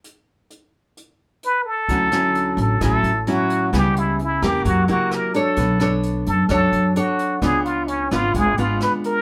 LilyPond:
<<
  \new Staff \with { instrumentName = "Muted trumpet" } { \time 4/4 \key d \major \tempo 4 = 130 r2. b'8 a'8~ | a'4. a'8 a'4 fis'4 | g'8 e'8 e'8 g'8 fis'8 fis'8 ais'8 a'8~ | a'4 r8 a'8 a'4 fis'4 |
gis'8 eis'8 cis'8 eis'8 gis'8 eis'8 b'8 bes'8 | }
  \new Staff \with { instrumentName = "Nylon-string guitar" } { \time 4/4 \key d \major << { r1 | <fis cis' e'>8 <fis cis' e'>4. <fis cis' e'>8 r8 <fis cis' e'>4 | <g b e'>4 r8 <bes e' g'>4 <ais e' g'>4 <d' a' cis''>8~ | <d' a' cis''>8 <d' a' cis''>4. <d' a' cis''>4 <d' a' cis''>4 |
<b d' eis'>4. <b d' eis'>4 <b d' eis'>4. | } \\ { r1 | d2 a,2 | cis2 fis2 | b2 fis2 |
cis2 gis2 | } >> }
  \new Staff \with { instrumentName = "Upright bass" } { \clef bass \time 4/4 \key d \major r1 | d,4. a,,8 a,,8 a,,8 r4 | cis,4. e,8 fis,8 cis,8 r4 | b,,4. fis,8 fis,8 fis,8 r4 |
cis,4. gis,,8 gis,,8 gis,,8 r4 | }
  \new DrumStaff \with { instrumentName = "Drums" } \drummode { \time 4/4 hh4 hh4 hh4 hh4 | <hh bd>8 <hh ss>8 hh8 hh8 <hh bd ss>8 hh8 hh8 hh8 | <hh bd ss>8 hh8 hh8 <hh ss>8 <hh bd>8 hh8 <hh ss>8 hh8 | <hh bd>8 <hh ss>8 hh8 hh8 <hh bd ss>8 hh8 hh8 hh8 |
<hh bd ss>8 hh8 hh8 <hh ss>8 <hh bd>8 hh8 <hh ss>8 hh8 | }
>>